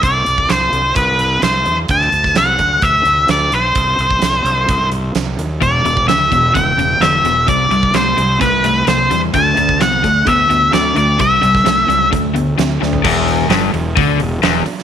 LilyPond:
<<
  \new Staff \with { instrumentName = "Lead electric guitar" } { \time 4/4 \key e \minor \tempo 4 = 129 d''4 c''4 b'4 c''8. r16 | a''4 fis''4 e''4 d''8 c''8~ | c''2~ c''8 r4. | d''4 e''4 g''4 e''4 |
d''4 c''4 b'4 c''8. r16 | a''4 fis''4 e''4 d''8 d''8 | e''2 r2 | r1 | }
  \new Staff \with { instrumentName = "Overdriven electric guitar" } { \clef bass \time 4/4 \key e \minor r1 | r1 | r1 | <e, b,>8 <e, b,>8 <e, cis>8 <e, b,>8 <e, cis>8 <e, cis>8 <e, d>8 <e, b,>8 |
<c g>8 <c g>8 <c a>8 <c g>8 <c a>8 <c a>8 <c ais>8 <c g>8 | <d a>8 <d a>8 <d b>8 <d a>8 <d b>8 <d b>8 <d c'>8 <d a>8 | <c g>8 <c g>8 <c a>8 <c g>8 <d a>8 <d b>8 <d c'>8 <d a>8 | e,4 g,8 e,8 d8 e,8 e,8 r8 | }
  \new Staff \with { instrumentName = "Overdriven electric guitar" } { \clef bass \time 4/4 \key e \minor r1 | r1 | r1 | <e, b,>8 <e, b,>8 <e, cis>8 <e, b,>8 <e, cis>8 <e, cis>8 <e, d>8 <e, b,>8 |
<c g>8 <c g>8 <c a>8 <c g>8 <c a>8 <c a>8 <c ais>8 <c g>8 | <d a>8 <d a>8 <d b>8 <d a>8 <d b>8 <d b>8 <d c'>8 <d a>8 | <c g>8 <c g>8 <c a>8 <c g>8 <d a>8 <d b>8 <d c'>8 <d a>8 | e,4 g,8 e,8 d8 e,8 e,8 r8 | }
  \new Staff \with { instrumentName = "Fingered electric bass" } { \clef bass \time 4/4 \key e \minor c,8 c,8 c,8 c,8 c,4 c,8 e,8 | d,8 d,8 c,8 d,8 d,8 d,8 d,8 b,,8 | c,8 c,8 c,8 c,8 c,4 c,8 ees,8 | e,,8 e,,8 d,8 e,,8 e,,8 e,,8 e,,8 e,,8 |
c,8 c,8 c,8 c,8 c,4 c,8 e,8 | d,8 d,8 c,8 d,8 d,8 d,8 d,8 d,8 | c,8 c,8 c,8 cis,8 d,4 d,8 d,8 | e,,4 g,,8 e,,8 d,8 e,,8 e,,8 r8 | }
  \new DrumStaff \with { instrumentName = "Drums" } \drummode { \time 4/4 <hh bd>8 hh16 bd16 <hh sn>8 hh8 <hh bd>8 hh8 <hh sn>8 hh8 | <hh bd>16 sn16 hh16 <bd sn>16 <hh sn>8 <hh bd>8 <hh bd>8 hh8 <hh sn>8 hh8 | <hh bd>8 hh16 bd16 <hh sn>8 hh8 <hh bd>8 hh8 <hh sn>8 hh8 | <hh bd>8 hh16 bd16 <hh sn>8 <hh bd>8 <hh bd>8 hh8 <hh sn>8 hh8 |
<hh bd>8 hh16 bd16 <hh sn>8 hh8 <hh bd>8 hh8 <hh sn>8 hh8 | <hh bd>8 hh16 bd16 <hh sn>8 <hh bd>8 <hh bd>8 hh8 <hh sn>8 hh8 | <hh bd>8 hh16 <bd sn>16 <hh sn>8 hh8 <hh bd>8 hh8 <hh sn>8 sn16 tomfh16 | <cymc bd>8 hho8 <hho sn>8 hho8 <hho bd>8 hho8 <hho sn>8 hho16 sn16 | }
>>